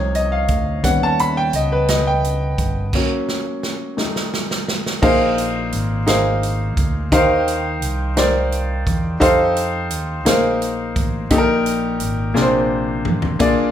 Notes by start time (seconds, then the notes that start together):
Already playing: C2 C3 F3 C4 D#4 C#5 F5
0.15 D#5, closed hi-hat
0.32 F5
0.48 D2, kick, closed hi-hat
0.83 D#2 G3 B3 C#4 F#5, kick, closed hi-hat
1.03 A5
1.19 B5, closed hi-hat
1.37 G5
1.53 C#2 D#5, closed hi-hat
1.72 B4
1.88 D#5, snare, closed hi-hat
2.07 G5
2.24 closed hi-hat
2.58 G1, kick, closed hi-hat
2.93 F#3 A#3 C#4, kick, snare, crash
3.29 snare
3.63 snare
3.97 G3 A3 D#4, snare
4.16 snare
4.34 snare
4.51 snare
4.68 snare
4.86 snare
5.02 A#1 A#2 D#4 G#4 A#4 C5 F5, kick, crash
5.38 closed hi-hat
5.72 G#1, closed hi-hat
6.06 D#4 G#4 A#4 C5 F5, snare, closed hi-hat
6.43 closed hi-hat
6.77 D2, kick, closed hi-hat
7.12 D#2 D#3 D#4 G4 A#4 C5 F5, kick, closed hi-hat
7.48 closed hi-hat
7.82 C2, closed hi-hat
8.16 D#4 G4 A#4 C5 D5, snare, closed hi-hat
8.52 closed hi-hat
8.87 E2, kick, closed hi-hat
9.20 F2 D#4 G4 A4 C5 F5, kick, closed hi-hat
9.56 closed hi-hat
9.91 D#2, closed hi-hat
10.25 A#1 A#3 D#4 G#4 A#4 C5 F5, snare, closed hi-hat
10.62 closed hi-hat
10.96 A1, kick, closed hi-hat
11.30 A#1 A#2 D#4 G4 A4, kick, closed hi-hat
11.38 A#4
11.66 closed hi-hat
12.00 G#1, closed hi-hat
12.34 A#1 C3 A#3 D4 F4 G#4 A#4, snare
12.42 C5
13.05 A1, mid tom
13.22 floor tom
13.39 A#1 A#2 A#3 D4 F4 G#4 D5, kick, closed hi-hat